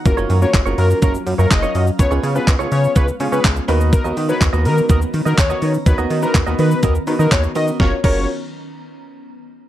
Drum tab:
CC |----------------|----------------|----------------|----------------|
HH |x-o-x-o-x-o-x-o-|x-o-x-o-x-o-x-o-|x-o-x-o-x-o-x-o-|x-o-x-o-x-o-x-o-|
SH |xxxxxxxxxxxxxxxx|xxxxxxxxxxxxxxxx|xxxxxxxxxxxxxxxx|xxxxxxxxxxxxxxxx|
CP |----x-------x---|----x-------x---|----x-------x---|----x-------x---|
SD |----------------|----------------|----------------|----------------|
BD |o---o---o---o---|o---o---o---o---|o---o---o---o---|o---o---o---o---|

CC |--x-------------|
HH |----------------|
SH |----------------|
CP |----------------|
SD |o---------------|
BD |o-o-------------|